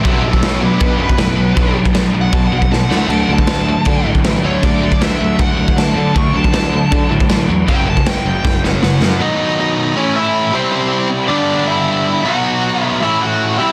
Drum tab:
CC |x---x---x---x---|x---x---x-------|x---x---x---x---|x---x---x---x---|
SD |----o-------o---|----o-------o-o-|----o-------o---|----o-------o---|
BD |o--o----o--o----|o--o----o--o----|---o----o--o----|o--o----o--o----|

CC |x---x---x---x---|x---x-----------|----------------|----------------|
SD |----o-------o---|----o---o-o-o-o-|----------------|----------------|
BD |o--o----o--o----|o--o----o-------|----------------|----------------|

CC |----------------|
SD |----------------|
BD |----------------|